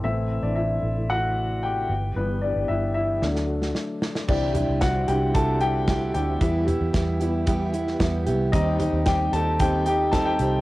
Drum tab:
CC |----------------|----------------|x---------------|----------------|
HH |----------------|----------------|--x-x-x-x-x-x-x-|x-x-x-x-x-x-x-x-|
SD |----------------|--------oo-oo-oo|----o-------o---|----o------oo---|
FT |----------------|----------------|--o-------------|--o-------------|
BD |----------------|----------------|o---o---o---o---|o---o---o---o---|

CC |----------------|
HH |x-x-x-x-x-x-x-x-|
SD |----o-------o---|
FT |--o-------------|
BD |o---o---o---o---|